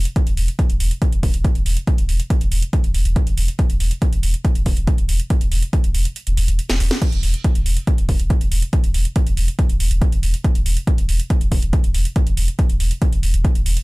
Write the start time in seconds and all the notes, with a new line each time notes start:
0.05 closed hi-hat
0.16 kick, closed hi-hat
0.27 E1, closed hi-hat
0.37 E1, open hi-hat
0.48 closed hi-hat
0.59 kick, closed hi-hat
0.70 E1, closed hi-hat
0.80 E1, open hi-hat
0.91 closed hi-hat
1.02 kick, closed hi-hat
1.12 E1, closed hi-hat
1.23 E1, kick, open hi-hat
1.34 E1, closed hi-hat
1.45 kick, closed hi-hat
1.55 E1, closed hi-hat
1.66 E1, open hi-hat
1.77 closed hi-hat
1.87 kick, closed hi-hat
1.98 E1, closed hi-hat
2.09 E1, open hi-hat
2.20 closed hi-hat
2.30 kick, closed hi-hat
2.41 E1, closed hi-hat
2.52 E1, open hi-hat
2.62 closed hi-hat
2.73 kick, closed hi-hat
2.84 E1, closed hi-hat
2.94 E1, open hi-hat
3.05 E1, closed hi-hat
3.16 kick, closed hi-hat
3.27 E1, closed hi-hat
3.37 E1, open hi-hat
3.48 closed hi-hat
3.59 kick, closed hi-hat
3.70 E1, closed hi-hat
3.80 E1, open hi-hat
3.91 closed hi-hat
4.02 kick, closed hi-hat
4.12 E1, closed hi-hat
4.23 E1, open hi-hat
4.34 closed hi-hat
4.45 kick, closed hi-hat
4.55 E1, closed hi-hat
4.66 E1, kick, open hi-hat
4.77 E1, closed hi-hat
4.87 kick, closed hi-hat
4.98 E1, closed hi-hat
5.09 E1, open hi-hat
5.20 closed hi-hat
5.30 kick, closed hi-hat
5.41 E1, closed hi-hat
5.52 E1, open hi-hat
5.62 closed hi-hat
5.73 kick, closed hi-hat
5.84 E1, closed hi-hat
5.95 E1, open hi-hat
6.05 closed hi-hat
6.16 closed hi-hat
6.27 E1, closed hi-hat
6.37 E1, open hi-hat
6.48 E1, closed hi-hat
6.59 closed hi-hat
6.69 E1, snare, closed hi-hat
6.80 E1, open hi-hat
6.91 snare, closed hi-hat
7.02 kick, closed hi-hat, crash
7.12 E1, closed hi-hat
7.23 E1, open hi-hat
7.34 closed hi-hat
7.44 kick, closed hi-hat
7.55 E1, closed hi-hat
7.66 E1, open hi-hat
7.77 closed hi-hat
7.87 kick, closed hi-hat
7.98 E1, closed hi-hat
8.09 E1, kick, open hi-hat
8.19 E1, closed hi-hat
8.30 kick, closed hi-hat
8.41 E1, closed hi-hat
8.52 E1, open hi-hat
8.62 closed hi-hat
8.73 kick, closed hi-hat
8.84 E1, closed hi-hat
8.94 E1, open hi-hat
9.05 closed hi-hat
9.16 kick, closed hi-hat
9.27 E1, closed hi-hat
9.37 E1, open hi-hat
9.48 closed hi-hat
9.59 kick, closed hi-hat
9.69 E1, closed hi-hat
9.80 E1, open hi-hat
9.91 E1, closed hi-hat
10.02 kick, closed hi-hat
10.12 E1, closed hi-hat
10.23 E1, open hi-hat
10.34 closed hi-hat
10.44 kick, closed hi-hat
10.55 E1, closed hi-hat
10.66 E1, open hi-hat
10.77 closed hi-hat
10.87 kick, closed hi-hat
10.98 E1, closed hi-hat
11.09 E1, open hi-hat
11.20 closed hi-hat
11.30 kick, closed hi-hat
11.41 E1, closed hi-hat
11.52 E1, kick, open hi-hat
11.62 E1, closed hi-hat
11.73 kick, closed hi-hat
11.84 E1, closed hi-hat
11.94 E1, open hi-hat
12.05 closed hi-hat
12.16 kick, closed hi-hat
12.27 E1, closed hi-hat
12.37 E1, open hi-hat
12.48 closed hi-hat
12.59 kick, closed hi-hat
12.70 E1, closed hi-hat
12.80 E1, open hi-hat
12.91 closed hi-hat
13.02 kick, closed hi-hat
13.12 E1, closed hi-hat
13.23 E1, open hi-hat
13.34 E1, closed hi-hat
13.45 kick, closed hi-hat
13.55 E1, closed hi-hat
13.66 E1, open hi-hat
13.77 closed hi-hat